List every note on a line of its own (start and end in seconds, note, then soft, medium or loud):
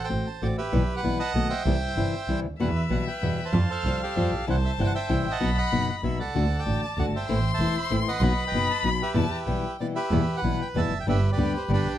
0.04 0.47 C5 medium
0.04 0.28 G5 medium
0.09 0.24 A1 medium
0.09 0.27 A3 medium
0.09 0.27 C4 medium
0.09 0.27 F#4 medium
0.27 0.41 A5 medium
0.42 0.55 A1 medium
0.42 0.59 A3 medium
0.42 0.59 C4 medium
0.42 0.59 F#4 medium
0.42 0.57 D5 medium
0.58 1.01 G4 medium
0.58 0.96 B4 medium
0.58 0.94 E5 medium
0.72 0.86 B1 medium
0.72 0.81 B2 medium
0.72 0.82 E3 medium
0.72 0.82 G3 medium
0.72 0.82 B3 medium
0.72 0.82 E4 medium
0.96 1.33 B4 medium
0.96 1.18 F#5 medium
1.03 1.17 B1 medium
1.03 1.20 B2 medium
1.03 1.20 E3 medium
1.03 1.20 G3 medium
1.03 1.21 B3 medium
1.03 1.21 E4 medium
1.19 1.63 D#5 medium
1.19 1.63 F#5 medium
1.19 1.48 A5 loud
1.35 1.48 B1 medium
1.35 1.51 B2 medium
1.35 1.52 D#3 medium
1.35 1.51 A3 medium
1.35 1.52 B3 medium
1.35 1.52 F#4 medium
1.50 2.40 C5 medium
1.50 2.40 E5 medium
1.50 2.40 G5 medium
1.66 1.79 C2 medium
1.66 1.75 C3 medium
1.66 1.75 E3 medium
1.66 1.75 G3 medium
1.66 1.75 C4 medium
1.66 1.75 E4 medium
1.96 2.10 G1 medium
1.96 2.13 C3 medium
1.96 2.14 E3 medium
1.96 2.14 G3 medium
1.96 2.14 C4 medium
1.96 2.14 E4 medium
2.28 2.41 C2 medium
2.28 2.45 C3 medium
2.28 2.45 E3 medium
2.28 2.45 G3 medium
2.28 2.45 C4 medium
2.28 2.46 E4 medium
2.44 2.59 D2 soft
2.59 2.73 E2 medium
2.59 2.69 B2 medium
2.59 2.69 E3 medium
2.59 2.69 G3 medium
2.59 2.69 B3 medium
2.59 2.69 F#4 medium
2.59 3.04 B4 soft
2.59 3.54 E5 medium
2.59 2.68 F#5 medium
2.75 2.90 E5 medium
2.90 3.04 B1 medium
2.90 3.08 B2 medium
2.90 3.08 E3 medium
2.90 3.08 G3 medium
2.90 3.08 B3 medium
2.90 3.08 F#4 medium
2.90 2.99 F#5 medium
3.07 3.51 B4 medium
3.07 3.45 G5 medium
3.23 3.36 E2 medium
3.23 3.39 B2 medium
3.23 3.39 E3 medium
3.23 3.39 G3 medium
3.23 3.39 B3 medium
3.23 3.40 F#4 medium
3.45 3.69 C5 medium
3.45 3.71 A5 medium
3.53 3.67 F2 medium
3.53 3.62 F3 medium
3.53 3.62 G3 medium
3.53 3.63 C4 medium
3.53 3.63 F4 medium
3.53 4.48 F5 medium
3.70 4.02 A4 medium
3.70 4.02 C5 medium
3.70 3.99 F5 medium
3.84 3.97 C2 medium
3.84 4.02 F3 medium
3.84 4.02 G3 medium
3.84 4.02 C4 medium
3.84 4.02 F4 medium
4.03 4.45 G4 medium
4.03 4.45 A4 medium
4.03 4.31 C5 medium
4.16 4.30 F2 medium
4.16 4.33 F3 medium
4.16 4.33 G3 medium
4.16 4.33 C4 medium
4.16 4.33 F4 medium
4.32 4.47 A#1 medium
4.46 4.60 C2 loud
4.46 4.56 C3 medium
4.46 4.56 E3 medium
4.46 4.56 G3 medium
4.46 4.56 C4 medium
4.46 4.56 E4 medium
4.46 4.92 C5 medium
4.46 4.56 F#5 medium
4.46 5.11 A5 medium
4.65 4.72 E5 medium
4.79 4.92 G1 medium
4.79 4.95 C3 medium
4.79 4.95 E3 medium
4.79 4.95 G3 medium
4.79 4.96 C4 medium
4.79 4.96 E4 medium
4.84 4.93 F#5 medium
4.84 4.87 G5 medium
4.95 5.38 C5 medium
4.95 5.38 E5 medium
4.95 5.32 G5 medium
5.09 5.23 C2 medium
5.09 5.26 C3 medium
5.09 5.26 E3 medium
5.09 5.26 G3 medium
5.09 5.26 C4 medium
5.09 5.26 E4 medium
5.09 5.40 G5 medium
5.26 5.41 A1 soft
5.31 5.57 D#5 medium
5.31 5.56 F#5 medium
5.31 5.58 A5 medium
5.40 5.54 B1 medium
5.40 5.49 B2 medium
5.40 5.49 F#3 medium
5.40 5.50 B3 medium
5.40 5.50 D#4 medium
5.40 5.50 F#4 medium
5.40 6.15 B5 medium
5.58 6.01 D#5 medium
5.58 5.88 F#5 medium
5.58 5.89 B5 medium
5.72 5.86 F#1 medium
5.72 5.89 B2 medium
5.72 5.89 F#3 medium
5.72 5.89 B3 medium
5.72 5.89 D#4 medium
5.72 5.89 F#4 medium
5.89 5.96 F#5 medium
6.03 6.16 B1 medium
6.03 6.20 B2 medium
6.03 6.20 F#3 medium
6.03 6.20 B3 medium
6.03 6.21 D#4 medium
6.03 6.21 F#4 medium
6.03 6.19 E5 medium
6.18 6.34 C2 soft
6.18 6.64 A4 medium
6.18 6.57 D5 medium
6.18 6.60 F#5 medium
6.34 6.48 D2 medium
6.34 6.44 D3 medium
6.34 6.44 A3 medium
6.34 6.44 D4 medium
6.34 6.44 F#4 medium
6.34 7.25 A5 medium
6.59 7.02 D5 soft
6.59 6.81 G5 medium
6.66 6.79 A1 medium
6.66 6.83 D3 medium
6.66 6.83 A3 medium
6.66 6.83 D4 medium
6.66 6.83 F#4 medium
6.83 6.90 A5 medium
6.98 7.11 D2 medium
6.98 7.15 D3 medium
6.98 7.15 A3 medium
6.98 7.15 D4 medium
6.98 7.15 F#4 medium
6.98 7.06 F#5 medium
7.12 7.28 G1 soft
7.12 7.52 E5 medium
7.16 7.52 C5 medium
7.16 7.51 G5 medium
7.28 7.42 A1 medium
7.28 7.38 E3 medium
7.28 7.38 A3 medium
7.28 7.38 C4 medium
7.28 7.38 E4 medium
7.28 8.23 C6 loud
7.54 7.96 C5 medium
7.54 7.92 E5 medium
7.54 7.75 A5 medium
7.60 7.73 E1 medium
7.60 7.77 E3 medium
7.60 7.77 A3 medium
7.60 7.77 C4 medium
7.60 7.77 E4 medium
7.78 7.93 B5 medium
7.90 8.04 A1 medium
7.90 8.07 E3 medium
7.90 8.08 A3 medium
7.90 8.08 C4 medium
7.90 8.08 E4 medium
7.90 8.00 E5 medium
8.08 8.45 B4 medium
8.08 8.45 D#5 medium
8.08 8.44 F#5 medium
8.21 8.34 B1 medium
8.21 8.31 B2 medium
8.21 8.31 F#3 medium
8.21 8.31 B3 medium
8.21 8.32 D#4 medium
8.21 8.31 F#4 medium
8.21 9.15 B5 loud
8.47 8.90 B4 medium
8.47 8.90 D#5 medium
8.47 8.68 G5 medium
8.53 8.66 F#1 medium
8.53 8.70 B2 medium
8.53 8.71 F#3 medium
8.53 8.71 B3 medium
8.53 8.71 D#4 medium
8.53 8.71 F#4 medium
8.70 8.84 A5 medium
8.84 8.97 B1 medium
8.84 9.01 B2 medium
8.84 9.01 F#3 medium
8.84 9.01 B3 medium
8.84 9.01 D#4 medium
8.84 9.02 F#4 medium
8.84 9.00 B5 medium
9.01 9.77 G4 medium
9.01 9.76 B4 medium
9.01 9.77 E5 medium
9.14 9.29 E2 medium
9.14 9.24 B2 medium
9.14 9.24 E3 medium
9.14 9.24 G3 medium
9.14 9.25 B3 medium
9.14 9.25 E4 medium
9.14 9.45 A5 medium
9.46 9.60 B1 medium
9.46 9.64 B2 medium
9.46 9.64 E3 medium
9.46 9.65 G3 medium
9.46 9.65 B3 medium
9.46 9.65 E4 medium
9.46 9.91 G5 medium
9.80 9.97 B2 medium
9.80 9.97 E3 medium
9.80 9.97 G3 medium
9.80 9.98 B3 medium
9.80 9.98 E4 medium
9.80 9.87 D5 medium
9.95 10.40 G4 medium
9.95 10.36 B4 soft
9.95 10.37 E5 medium
10.11 10.25 E2 medium
10.11 10.21 B2 medium
10.11 10.21 E3 medium
10.11 10.21 G3 medium
10.11 10.21 B3 medium
10.11 10.21 E4 medium
10.37 10.81 B4 medium
10.37 10.60 F#5 medium
10.43 10.57 B1 medium
10.43 10.61 B2 medium
10.43 10.61 E3 medium
10.43 10.61 G3 medium
10.43 10.61 B3 medium
10.43 10.61 E4 medium
10.61 10.68 G5 medium
10.75 10.88 E2 medium
10.75 10.92 B2 medium
10.75 10.93 E3 medium
10.75 10.93 G3 medium
10.75 10.93 B3 medium
10.75 10.93 E4 medium
10.75 11.06 E5 medium
10.75 10.98 A5 medium
10.91 11.06 F1 medium
11.00 11.07 G5 medium
11.07 11.20 G1 loud
11.07 11.16 D3 medium
11.07 11.16 G3 medium
11.07 11.16 B3 medium
11.07 11.16 D4 medium
11.07 11.16 G4 medium
11.07 11.31 G4 medium
11.07 11.32 B4 medium
11.07 11.30 E5 medium
11.32 11.72 G4 medium
11.32 11.71 B4 medium
11.32 11.53 D5 medium
11.37 11.51 D2 medium
11.37 11.54 D3 medium
11.37 11.55 G3 medium
11.37 11.55 B3 medium
11.37 11.55 D4 medium
11.37 11.55 G4 medium
11.57 11.63 C5 medium
11.69 11.82 G1 medium
11.69 11.86 D3 medium
11.69 11.86 G3 medium
11.69 11.86 B3 medium
11.69 11.87 D4 medium
11.69 11.86 G4 medium
11.73 11.98 D4 medium
11.73 11.98 G4 medium
11.73 11.93 B4 loud
11.85 11.98 A#1 medium